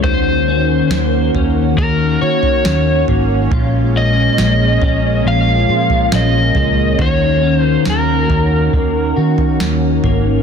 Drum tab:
SD |----o-------o---|----o-------o---|----o-------o---|
FT |o-----o----o--o-|o-----o----o--o-|o-----o----o--o-|
BD |--------o-------|o-----o---------|--------o-------|